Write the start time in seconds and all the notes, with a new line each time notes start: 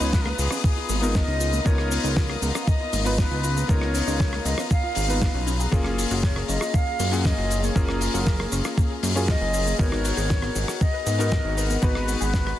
Already playing: B3 D#4 F4 B4 F5 A#5 D#6
0.00 C#2 D#4 C#5, shaker
0.12 F4 B4, kick, snare, shaker
0.21 A#4
0.26 A#3, cross-stick
0.30 B4
0.38 C#2 B3 G#4, open hi-hat, shaker
0.51 C#4, cross-stick, shaker
0.64 A#3 G#4, kick, shaker
0.77 F4
0.89 G#1 A#3, open hi-hat, shaker
1.01 B3 D#4 F4 A#4, shaker
1.15 C#4 D#5, kick, snare, shaker
1.28 C#2 D#4
1.40 F4, open hi-hat, shaker
1.53 A#3, shaker
1.65 C#2 A#3 B3 D#4 F4 A#4 C#5, kick, shaker
1.78 B3, cross-stick
1.91 C#4, open hi-hat, shaker
2.04 C#2 D#4, shaker
2.17 F4, kick, snare, shaker
2.29 A#3, cross-stick
2.42 C#2 B3, open hi-hat, shaker
2.55 C#4, cross-stick, shaker
2.61 F5
2.67 A#3 D#5, kick, shaker
2.80 F4
2.93 G#1 A#3, open hi-hat, shaker
3.04 B3 D#4 F4 B4, shaker
3.18 C#4 B4, kick, snare, shaker
3.31 C#2 D#4
3.43 F4, open hi-hat, shaker
3.57 A#3, shaker
3.68 C#2 A#3 B3 D#4 F4 A#4 C#5, kick, shaker
3.81 B3, cross-stick
3.95 C#4, open hi-hat, shaker
4.07 C#2 D#4, shaker
4.20 F4, kick, snare, shaker
4.33 A#3, cross-stick
4.45 C#2 B3 D#5, open hi-hat, shaker
4.58 C#4, cross-stick, shaker
4.71 A#3 F5, kick, shaker
4.84 F4
4.95 G#1 C#4, open hi-hat, shaker
5.08 B3 D#4 F4 B4, shaker
5.22 A#3, kick, snare, shaker
5.34 B1 C#4
5.47 C#4, open hi-hat, shaker
5.60 G#4, shaker
5.71 F#1 A#3 C#4 F4 G#4, kick, shaker
5.84 C#4, cross-stick
5.98 F4, open hi-hat, shaker
6.11 F#1 F#4, shaker
6.23 G#4 C#5, kick, snare, shaker
6.36 A#3, cross-stick
6.48 F#1 C#4 D#5, open hi-hat, shaker
6.61 F4, cross-stick, shaker
6.74 A#3 F5, kick, shaker
6.87 G#4
7.00 F#2 A#3, open hi-hat, shaker
7.11 A#3 C#4 F4 G#4 F#5, shaker
7.25 F4 D#5, kick, snare, shaker
7.38 F#1 F#4
7.50 G#4, open hi-hat, shaker
7.63 A#3 C#5, shaker
7.75 F#1 A#3 C#4 F4 G#4 A#4, kick, shaker
7.89 C#4, cross-stick
8.01 F4, open hi-hat, shaker
8.14 F#1 F#4, shaker
8.27 G#4, kick, snare, shaker
8.39 A#3, cross-stick
8.52 F#1 C#4, open hi-hat, shaker
8.64 F4, cross-stick, shaker
8.78 A#3, kick, shaker
8.90 G#4
9.03 F#2 A#3, open hi-hat, shaker
9.15 A#3 C#4 F4 G#4, shaker
9.28 F4 D#5, kick, snare, shaker
9.41 F#1 F#4
9.54 G#4, open hi-hat, shaker
9.67 A#3, shaker
9.78 G#1 B3 D#4 F#4 A#4 C#5 F#5, kick, shaker
9.92 D#4, cross-stick
10.04 F#4, open hi-hat, shaker
10.17 G#1 G#4, shaker
10.30 B4, kick, snare, shaker
10.42 B3, cross-stick
10.55 G#1 D#4, open hi-hat, shaker
10.68 F#4, cross-stick, shaker
10.81 B3 D#5, kick, shaker
10.94 B4
11.06 G#2 B3, open hi-hat, shaker
11.18 B3 D#4 F#4 A#4, shaker
11.31 F#4, kick, snare, shaker
11.44 G#1 G#4
11.57 B4, open hi-hat, shaker
11.70 B3, shaker
11.82 G#1 B3 D#4 F#4 B4, kick, shaker
11.95 D#4, cross-stick
12.08 F#4, open hi-hat, shaker
12.21 G#1 G#4, shaker
12.33 B4, kick, snare, shaker
12.46 B3, cross-stick